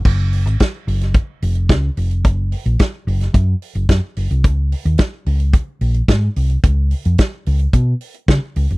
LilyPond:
<<
  \new Staff \with { instrumentName = "Fingered electric bass" } { \clef bass \time 4/4 \key ges \lydian \tempo 4 = 109 ges,,8. aes,,16 r8 ges,,8. r16 f,,8 des,8 f,,8 | ges,,8. bes,,16 r8 ges,,8 ges,8 r16 ges,,16 ges,16 r16 ges,,16 c,16 | des,8. ees,16 r8 des,8. r16 bes,,8 aes,8 c,8 | des,8. f,16 r8 des,8 ces8 r8 des16 r16 des,16 f,,16 | }
  \new DrumStaff \with { instrumentName = "Drums" } \drummode { \time 4/4 <cymc bd>8 hho16 hh16 <hh bd sn>8 hho16 <hh sn>16 <hh bd>8 hho16 hh16 <hh bd sn>8 hho16 hh16 | <hh bd>8 hho16 hh16 <hh bd sn>8 hho16 <hh sn>16 <hh bd>8 hho16 hh16 <hh bd sn>8 hho16 hh16 | <hh bd>8 hho16 hh16 <hh bd sn>8 hho16 hh16 <hh bd>8 hho16 hh16 <hh bd sn>8 hho16 hh16 | <hh bd>8 hho16 hh16 <hh bd sn>8 hho16 hh16 <hh bd>8 hho16 hh16 <hh bd sn>8 hho16 hh16 | }
>>